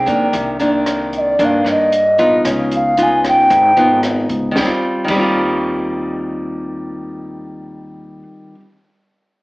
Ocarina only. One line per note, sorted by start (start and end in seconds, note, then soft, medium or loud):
0.00 0.37 G5 medium
1.17 1.47 D5 medium
1.17 1.22 D#5 medium
1.45 1.68 F5 medium
1.70 2.43 D#5 medium
2.76 3.04 F5 medium
3.03 3.26 G#5 medium
3.28 4.01 G5 medium